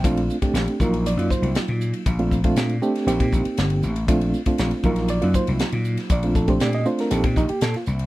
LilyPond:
<<
  \new Staff \with { instrumentName = "Reed electric piano" } { \time 4/4 \key ees \lydian \tempo 4 = 119 << { r4. bes'8 d''8 c''8 r4 | r1 | r4. bes'8 d''8 c''8 r4 | d''16 r16 a'16 c''16 d''16 ees''16 c''16 bes'16 a'16 c'16 ees'16 g'16 a'16 f'16 r8 | } \\ { <a c' d' f'>8. <a c' d' g'>8. <ges bes ees' f'>8. <ges bes ees' f'>4.~ <ges bes ees' f'>16 | r16 <a c' d' f'>8 <a c' d' f'>8. <a c' d' g'>8 <bes c' ees' g'>4.~ <bes c' ees' g'>16 r16 | <a c' d' f'>8. <a c' d' f'>8. <ges bes ees' f'>8. <ges bes ees' f'>4.~ <ges bes ees' f'>16 | r16 <a c' d' f'>8 <a c' d' g'>8. <a c' d' f'>8 <bes c' ees' g'>4.~ <bes c' ees' g'>16 r16 | } >> }
  \new Staff \with { instrumentName = "Slap bass" } { \clef bass \time 4/4 \key ees \lydian bes,,8 r8 bes,,16 r16 bes,,8. ges,16 r16 c,16 r16 bes,8 r16 | bes,,4 bes,8 r8 bes,,16 bes,16 bes,,16 r16 g,,8 a,,8 | bes,,8 r8 bes,,16 r16 bes,,8. ges,16 r16 c,16 r16 bes,8 r16 | bes,,4 bes,8 r8 bes,,16 bes,16 bes,,16 r16 bes,16 r16 c,8 | }
  \new DrumStaff \with { instrumentName = "Drums" } \drummode { \time 4/4 <hhp bd cymr>16 cymr16 hhp16 <bd cymr>16 <hhp cymr sn>16 cymr16 <hhp bd>16 cymr16 <hhp cymr>16 cymr16 <hhp bd>16 cymr16 <hhp cymr sn>16 cymr16 hhp16 cymr16 | <hhp bd cymr>16 cymr16 <hhp bd>16 <bd cymr>16 <hhp cymr sn>16 cymr16 hhp16 <cymr sn>16 <hhp cymr>16 <bd cymr>16 <hhp bd>16 cymr16 <hhp cymr sn>16 cymr16 hhp16 cymr16 | <hhp bd cymr>16 cymr16 hhp16 <bd cymr>16 <hhp cymr sn>16 <cymr sn>16 <hhp bd>16 <cymr sn>16 <hhp cymr>16 cymr16 <hhp bd>16 cymr16 <hhp cymr sn>16 cymr16 hhp16 <cymr sn>16 | <hhp bd cymr>16 cymr16 <hhp bd>16 <bd cymr>16 <hhp cymr sn>16 <cymr sn>16 hhp16 <cymr sn>16 <hhp cymr>16 <bd cymr>16 <hhp bd>16 cymr16 <hhp cymr sn>16 <cymr sn>16 hhp16 cymr16 | }
>>